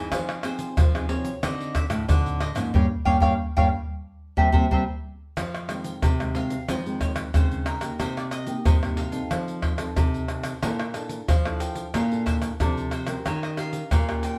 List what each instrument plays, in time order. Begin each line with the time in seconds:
Already playing: nylon-string guitar C4 D#4 G#4, mandolin D#5
0.12 nylon-string guitar F3, pandeiro, tamborim, shaker, surdo
0.29 pandeiro, tamborim, shaker
0.43 nylon-string guitar C4 D#4 G#4, mandolin C5, pandeiro, tamborim, shaker
0.59 pandeiro, shaker
0.77 nylon-string guitar F3, pandeiro, tamborim, shaker, surdo
0.94 nylon-string guitar C4 D#4 G#4, pandeiro, tamborim, shaker
1.09 nylon-string guitar C4 D#4 G#4, mandolin C#5, pandeiro
1.25 pandeiro, shaker
1.43 nylon-string guitar D3 C4 D#4 F#4, mandolin D#5, pandeiro, tamborim, shaker, surdo
1.60 pandeiro, shaker
1.75 mandolin E5, pandeiro, tamborim, shaker, surdo
1.90 nylon-string guitar A2, pandeiro, tamborim, shaker
2.08 nylon-string guitar A2 D3 C4 D#4 F#4, mandolin F#5, pandeiro, tamborim, shaker, surdo
2.26 pandeiro, shaker
2.41 mandolin D#5, pandeiro, tamborim
2.55 nylon-string guitar G#2 F3 A#3 C#4, pandeiro, tamborim, shaker
2.74 nylon-string guitar G2 G3 A#3 C#4, mandolin C#5 F5 G5, surdo
3.05 nylon-string guitar G2 G3 A#3 C#4, mandolin C#5 F5 G5, surdo
3.20 nylon-string guitar G2 G3 A#3 C#4, mandolin C#5 F5 G5, surdo
3.57 nylon-string guitar G2 G3 A#3 C#4, mandolin C#5 F5 G5, surdo
4.37 nylon-string guitar C3 G3 A#3 C4, mandolin C5 E5 G5, surdo
4.52 nylon-string guitar C3 G3 A#3 C4, mandolin C5 E5 G5, surdo
4.71 nylon-string guitar C3 G3 A#3 C4, mandolin C5 E5 G5, surdo
5.37 nylon-string guitar F2 F3, pandeiro, tamborim, shaker, surdo
5.55 pandeiro, tamborim, shaker
5.69 nylon-string guitar D#3 G#3 C4, pandeiro, tamborim, shaker
5.84 pandeiro, shaker
6.02 nylon-string guitar C3, pandeiro, tamborim, shaker, surdo
6.20 nylon-string guitar D#3 G#3 C4, pandeiro, tamborim, shaker
6.34 nylon-string guitar D#3 G#3 C4, mandolin F5, pandeiro
6.50 pandeiro, shaker
6.68 nylon-string guitar F2 D#3 F3 G#3 C4, mandolin D#5, pandeiro, tamborim, shaker, surdo
6.86 nylon-string guitar D#3 G#3 C4, pandeiro, shaker
7.01 mandolin C#5, pandeiro, tamborim, shaker, surdo
7.16 pandeiro, tamborim, shaker
7.34 nylon-string guitar C#3 D#3 G#3 C4, mandolin C5, pandeiro, tamborim, shaker, surdo
7.51 pandeiro, shaker
7.66 mandolin A#4, pandeiro, tamborim, shaker
7.81 nylon-string guitar A#3 D#4 G4, pandeiro, tamborim, shaker
7.99 nylon-string guitar C3, mandolin C5, pandeiro, tamborim, shaker, surdo
8.17 mandolin D5, pandeiro, tamborim, shaker
8.31 mandolin D#5, pandeiro, tamborim, shaker
8.46 nylon-string guitar A#3 D#4 G4, pandeiro, shaker
8.65 nylon-string guitar G2 C3, mandolin D#5, pandeiro, tamborim, shaker, surdo
8.82 nylon-string guitar A#3 D#4 G4, pandeiro, tamborim, shaker
8.97 mandolin F5, pandeiro
9.11 nylon-string guitar C4 D#4 A4, pandeiro, shaker
9.31 nylon-string guitar F3, pandeiro, tamborim, shaker, surdo
9.48 pandeiro, shaker
9.62 pandeiro, tamborim, surdo
9.78 nylon-string guitar C4 D#4 A4, pandeiro, tamborim, shaker
9.96 nylon-string guitar C3, pandeiro, tamborim, shaker, surdo
10.14 pandeiro, shaker
10.28 nylon-string guitar C4 D#4 A4, pandeiro, tamborim, shaker
10.44 pandeiro, tamborim, shaker
10.62 nylon-string guitar A#2 A#3 D4 E4 A4, pandeiro, tamborim, shaker, surdo
10.79 pandeiro, tamborim, shaker
10.94 nylon-string guitar D4 E4 A4, pandeiro, tamborim, shaker
11.09 pandeiro, shaker
11.28 nylon-string guitar F3, pandeiro, tamborim, shaker, surdo
11.45 nylon-string guitar D4 E4 A4, pandeiro, tamborim, shaker
11.60 mandolin G5, pandeiro, shaker
11.75 pandeiro, shaker
11.94 nylon-string guitar A#2 A#3 D4 E4 A4, mandolin F5, pandeiro, tamborim, shaker, surdo
12.11 nylon-string guitar D4 E4 A4, pandeiro, shaker
12.26 mandolin E5, pandeiro, tamborim, shaker, surdo
12.42 pandeiro, tamborim, shaker
12.60 nylon-string guitar C3 F3 D4 E4 A4, mandolin D5, pandeiro, tamborim, shaker, surdo
12.77 pandeiro, shaker
12.91 mandolin C5, pandeiro, tamborim, shaker
13.07 nylon-string guitar C#4 G4 A#4, pandeiro, tamborim, shaker
13.25 nylon-string guitar D#3, mandolin C#5, pandeiro, tamborim, shaker, surdo
13.43 mandolin D#5, pandeiro, tamborim, shaker
13.57 nylon-string guitar C#4 G4 A#4, mandolin F5, pandeiro, tamborim, shaker
13.73 pandeiro, shaker
13.91 nylon-string guitar A#2, mandolin F5, pandeiro, tamborim, shaker, surdo
14.08 nylon-string guitar C#4 G4 A#4, pandeiro, tamborim, shaker
14.23 mandolin G5, pandeiro, shaker